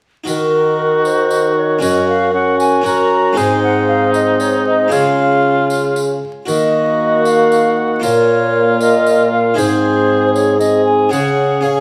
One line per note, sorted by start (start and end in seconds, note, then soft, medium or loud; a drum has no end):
0.24 1.79 D#3 soft
0.24 1.77 D#4 soft
0.24 1.79 D#4 medium
0.24 1.77 F#4 soft
0.24 1.78 F#4 medium
0.24 1.78 A#4 soft
0.24 tambourine medium
0.28 1.84 D#3 medium
0.28 1.01 A#4 medium
1.05 1.56 C5 medium
1.05 tambourine soft
1.31 tambourine medium
1.57 1.82 C#5 medium
1.79 3.36 F#2 medium
1.79 3.33 F#2 medium
1.79 2.80 C#4 soft
1.79 2.33 C#4 medium
1.79 2.81 F#4 soft
1.79 2.32 F#4 medium
1.79 2.82 A#4 soft
1.79 2.08 D#5 medium
1.79 tambourine medium
2.08 2.33 F5 medium
2.34 2.84 C#4 medium
2.34 2.84 F#4 medium
2.34 2.59 F#5 medium
2.59 2.85 G#5 medium
2.59 tambourine medium
2.82 3.33 C#4 medium
2.82 3.38 C#4 medium
2.82 3.34 F#4 soft
2.82 3.35 A#4 medium
2.86 3.38 F#4 medium
2.86 3.38 A#5 medium
2.86 tambourine soft
3.33 4.88 G#2 medium
3.33 4.86 G#3 medium
3.33 4.90 C4 medium
3.33 4.86 D#4 medium
3.33 4.87 C5 soft
3.33 3.62 G#5 medium
3.37 4.88 G#2 medium
3.37 4.94 D#4 medium
3.37 tambourine medium
3.63 3.87 F#5 medium
3.88 4.13 F5 medium
4.14 4.42 D#5 medium
4.14 tambourine medium
4.40 4.65 C#5 medium
4.40 tambourine soft
4.66 4.91 D#5 medium
4.88 6.18 C#3 soft
4.88 6.19 C#3 medium
4.88 6.42 G#3 soft
4.88 6.19 C#4 medium
4.88 6.42 F4 soft
4.88 6.22 F4 medium
4.88 6.43 C#5 soft
4.88 tambourine medium
4.92 5.94 F5 medium
5.70 tambourine medium
5.96 tambourine medium
6.46 7.99 D#3 medium
6.46 7.99 D#3 soft
6.46 7.99 A#3 medium
6.46 7.98 F#4 soft
6.46 7.99 F#4 medium
6.46 7.99 A#4 soft
6.46 7.21 D#5 medium
6.46 tambourine medium
7.25 7.79 F5 medium
7.25 tambourine medium
7.52 tambourine soft
7.77 8.05 F#5 medium
8.00 9.54 A#2 medium
8.00 9.54 A#2 soft
8.00 9.52 A#3 soft
8.00 9.54 A#3 medium
8.00 9.52 F4 soft
8.00 9.54 F4 medium
8.00 9.53 A#4 soft
8.00 8.80 C#5 medium
8.00 tambourine medium
8.81 9.31 D#5 medium
8.81 tambourine medium
9.06 tambourine medium
9.32 9.59 F5 medium
9.54 11.09 G#2 medium
9.54 11.08 G#2 medium
9.54 10.58 C4 medium
9.54 11.07 D#4 soft
9.54 11.07 G#4 soft
9.54 10.58 G#4 medium
9.54 11.08 C5 medium
9.54 10.33 C5 medium
9.54 tambourine medium
10.34 10.58 C#5 medium
10.34 tambourine medium
10.59 11.13 C4 medium
10.59 11.11 G#4 medium
10.59 10.85 D#5 medium
10.59 tambourine medium
10.85 11.12 G#5 medium
11.09 11.80 C#3 medium
11.09 11.80 C#3 soft
11.09 11.60 C#4 soft
11.09 11.63 C#4 medium
11.09 11.61 G#4 soft
11.09 11.63 G#4 medium
11.09 11.62 C#5 soft
11.09 11.64 F#5 medium
11.09 tambourine medium
11.61 11.80 C#4 soft
11.61 11.80 C#4 medium
11.61 11.80 G#4 soft
11.61 11.80 G#4 medium
11.61 11.80 C#5 soft
11.61 11.80 F5 medium